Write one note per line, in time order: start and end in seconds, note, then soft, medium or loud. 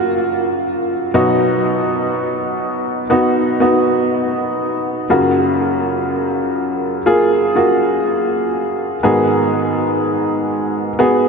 0.00 1.10 F#2 medium
0.00 1.10 C#3 medium
0.00 1.17 A#3 medium
0.00 1.16 F4 medium
0.00 1.15 F#4 loud
1.14 5.06 B2 medium
1.14 5.06 F#3 medium
1.14 3.01 B3 medium
1.14 3.01 D#4 medium
1.14 3.01 F#4 medium
3.10 3.57 B3 medium
3.10 3.57 D#4 medium
3.10 3.58 F#4 medium
3.60 5.03 B3 medium
3.60 5.03 D#4 medium
3.60 5.03 F#4 medium
5.09 9.00 F#2 medium
5.09 9.00 C#3 medium
5.09 6.97 A#3 medium
5.09 6.98 F4 medium
5.09 6.98 F#4 medium
7.06 7.53 A#3 medium
7.06 7.53 F4 medium
7.06 7.54 G#4 medium
7.55 8.96 A#3 medium
7.55 8.96 F4 medium
7.55 8.97 F#4 medium
9.03 11.29 G#2 medium
9.03 11.29 D#3 medium
9.03 10.90 B3 medium
9.03 10.90 F#4 medium
9.03 10.90 G#4 medium
10.99 11.29 B3 medium
10.99 11.29 F#4 medium
10.99 11.29 G#4 medium